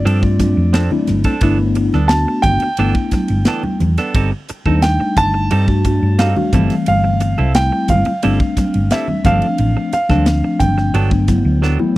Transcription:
Already playing: D5
0.05 G2 F3 C4 D4 A4, ride
0.22 A3 C4 D4 F4, muted clean electric guitar stroke, kick
0.39 A3 C4 D4 F4, muted clean electric guitar stroke, kick, snare, hi-hat pedal, ride, high conga
0.57 F2
0.73 F3 C4 D4 A4, snare, ride
0.91 A3 C4 D4 E4, muted fingered electric bass stroke, muted clean electric guitar stroke, high conga, low conga
1.07 G1, snare, hi-hat pedal, ride, high conga, low conga
1.24 C4 D4 A4, kick, ride
1.41 G1 E3 A3 B3 D4 E4 A4, kick, ride
1.59 muted clean electric guitar stroke
1.75 muted clean electric guitar stroke, hi-hat pedal, ride
1.93 D2 B3 D4 A4, snare, high conga
2.08 A3 B3 F#4 A5, muted clean electric guitar stroke, snare, ride
2.12 D4
2.28 muted clean electric guitar stroke
2.42 G1 G5, kick, hi-hat pedal, ride, high conga, low conga
2.60 muted clean electric guitar stroke, ride
2.77 G1 E3 A3 B3 D4 E4 A4, ride
2.95 kick
3.11 muted fingered electric bass stroke, muted clean electric guitar stroke, kick, snare, hi-hat pedal, ride, high conga
3.28 G1, ride
3.45 E3 B3 D4 A4, snare, ride
3.63 muted clean electric guitar stroke, muted fingered electric bass stroke, high conga, low conga
3.80 E2, hi-hat pedal, ride, high conga, low conga
3.98 B3 D4 A4, snare, ride
4.15 G1 G3 C4 D#4 A4, kick, ride
4.32 muted clean electric guitar stroke
4.49 muted clean electric guitar stroke, muted fingered electric bass stroke, hi-hat pedal, ride
4.66 D#2 G3 A3 C4 D4 D#4 A4, kick, high conga
4.82 G5, muted clean electric guitar stroke, snare, ride
5.00 muted clean electric guitar stroke
5.16 G1 A5, kick, hi-hat pedal, ride, high conga, low conga
5.34 muted clean electric guitar stroke
5.51 G2 G3 C4 D#4 A4, ride
5.68 G3 A3 D4 F#4, muted clean electric guitar stroke, kick
5.85 G3 A3 D4 F#4, muted clean electric guitar stroke, kick, hi-hat pedal, ride
6.02 G2
6.19 G3 C4 D#4 A4 F5, snare, ride
6.36 G3 A3 D4 F#4, muted fingered electric bass stroke, high conga, low conga
6.53 G1 E3 G3 A3 C4 E4 A4, kick, hi-hat pedal, ride, high conga, low conga
6.70 snare, ride
6.86 G1 F5, ride
7.04 muted clean electric guitar stroke
7.20 muted clean electric guitar stroke, hi-hat pedal, ride
7.38 C2 C4 E4 A4, high conga
7.55 G3 A3 C4 E4 G5, muted clean electric guitar stroke, snare, ride
7.72 muted clean electric guitar stroke
7.88 G1 F5, kick, hi-hat pedal, ride, high conga, low conga
8.05 muted clean electric guitar stroke, ride
8.22 G1 G3 A3 C4 D4 E4 A4, ride
8.40 muted clean electric guitar stroke, kick
8.57 muted fingered electric bass stroke, muted clean electric guitar stroke, kick, snare, hi-hat pedal, ride, high conga
8.74 G1, ride
8.91 G3 C4 E4 A4 E5, snare, ride
9.08 muted clean electric guitar stroke, muted fingered electric bass stroke, high conga, low conga
9.24 G1 F3 A3 C4 D4 A4 F5, kick, hi-hat pedal, ride, high conga, low conga
9.42 ride
9.58 A1, ride
9.77 muted clean electric guitar stroke
9.93 F5, muted fingered electric bass stroke, muted clean electric guitar stroke, hi-hat pedal, ride
10.09 D2 F3 A3 C4 D4 A4, kick, snare, high conga
10.26 muted clean electric guitar stroke, snare, ride
10.44 muted clean electric guitar stroke
10.60 G1 G5, kick, hi-hat pedal, ride, high conga, low conga
10.77 muted clean electric guitar stroke, snare
10.94 G1 F#3 B3 D4 A4, ride
11.11 F#3 A3 B3 D4, muted clean electric guitar stroke, kick
11.28 F#3 A3 B3 E4, muted clean electric guitar stroke, kick, snare, hi-hat pedal, ride, high conga
11.45 D2
11.62 F#3 B3 D4 A4, snare
11.79 F#3 A3 B3 E4, muted clean electric guitar stroke, low conga

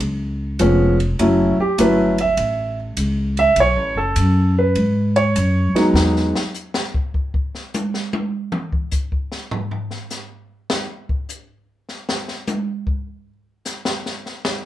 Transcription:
0.00 C#2, kick, ride
0.59 F1 F3 G#3 B3 C#4, kick, hi-hat pedal, ride
1.00 ride
1.19 F#1 F#3 A3 C#4 E4, kick, ride
1.58 G4, muted upright bass stroke
1.78 G1 F#3 A3 C#4 E4 B4, kick, hi-hat pedal, ride
2.18 E5, ride
2.37 A1, kick, ride
2.97 C#2, kick, hi-hat pedal, ride
3.37 E5, ride
3.56 B1, kick, ride
3.60 C#5
3.75 A1
3.95 F#1 A4
4.16 F#2, hi-hat pedal, ride
4.59 B4
4.75 G#2, kick, ride
5.16 C#5, ride
5.36 F#2, kick, hi-hat pedal, ride
5.73 F#3 G#3 B3 D#4, muted upright bass stroke, snare, ride
5.93 E2, snare
6.16 snare
6.36 snare
6.54 hi-hat pedal
6.74 snare
6.94 kick
7.14 kick
7.34 kick
7.55 snare
7.74 hi-hat pedal, high tom
7.94 snare
8.13 high tom
8.52 mid tom
8.72 kick
8.91 kick, hi-hat pedal
9.12 kick
9.32 snare
9.51 floor tom
9.71 floor tom
9.91 snare
10.10 snare, hi-hat pedal
10.70 snare
11.09 kick
11.29 hi-hat pedal
11.89 snare
12.09 snare
12.28 snare
12.47 hi-hat pedal, high tom
12.87 kick
13.65 snare, hi-hat pedal
13.85 snare
14.06 snare
14.26 snare
14.45 snare

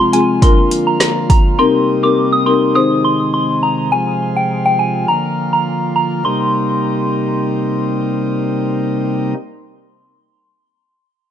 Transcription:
Already playing: C3 F3 G#3 F4 G#4
0.00 C6
0.13 G#3 C4 F4 G#4 G#5, closed hi-hat
0.42 D3 A#3 D4 F4 A#4 C6, kick, closed hi-hat
0.71 closed hi-hat
0.87 A#5
1.00 cross-stick, snare, closed hi-hat
1.30 A#5, kick, closed hi-hat
1.59 C3 G3 C4 D#4 G4 A#4 C6
2.03 C4 D#4 G4 A#4 D6
2.33 D#6
2.46 C4 D#4 G4 A#4 C6
2.75 D#3 G#3 C4 D#4 G#4 C5 D#6
3.05 C6
3.34 C6
3.63 A#5
3.92 F3 G#3 F4 G#5
4.36 G5
4.66 G5
4.79 G#5
5.08 D3 A#3 F4 A#5
5.53 A#5
5.96 A#5
6.25 C3 G3 A#3 D#4 C6

